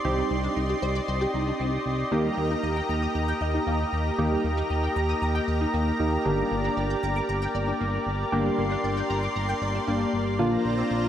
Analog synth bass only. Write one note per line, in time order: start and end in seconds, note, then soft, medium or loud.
0.05 0.23 C2 loud
0.31 0.49 C2 loud
0.56 0.75 C2 loud
0.82 1.00 C2 loud
1.08 1.26 C2 loud
1.34 1.52 C2 loud
1.60 1.78 C2 loud
1.86 2.04 C2 loud
2.12 2.30 D#2 loud
2.38 2.56 D#2 loud
2.63 2.81 D#2 medium
2.89 3.07 D#2 loud
3.15 3.33 D#2 loud
3.41 3.59 D#2 loud
3.67 3.85 D#2 loud
3.93 4.11 D#2 loud
4.19 4.37 D#2 loud
4.44 4.63 D#2 loud
4.70 4.88 D#2 loud
4.96 5.14 D#2 loud
5.22 5.40 D#2 loud
5.48 5.66 D#2 loud
5.74 5.92 D#2 loud
6.00 6.18 D#2 loud
6.26 6.44 G1 loud
6.51 6.69 G1 loud
6.77 6.95 G1 loud
7.03 7.21 G1 loud
7.29 7.47 G1 loud
7.55 7.73 G1 loud
7.81 7.99 G1 loud
8.07 8.25 G1 loud
8.32 8.50 G1 loud
8.58 8.76 G1 loud
8.84 9.02 G1 loud
9.10 9.28 G1 loud
9.36 9.54 G1 loud
9.62 9.80 G1 loud
9.88 10.06 G1 loud
10.13 10.41 G1 loud
10.39 10.57 A#1 loud
10.65 10.83 A#1 loud
10.91 11.09 A#1 loud